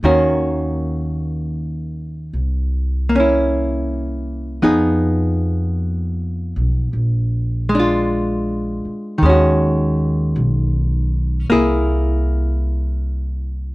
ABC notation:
X:1
M:4/4
L:1/8
Q:"Swing" 1/4=52
K:Ebm
V:1 name="Hollow-body jazz guitar"
[E,B,DG]4 z [B,D=E]3 | [F,CEA]4 z [A,=DF]3 | [E,A,DG]4 [B,=E^G]4 |]
V:2 name="Upright bass" clef=bass
E,,4 =C,,4 | F,,3 C,, B,,,3 z | E,,2 C,,2 =C,,4 |]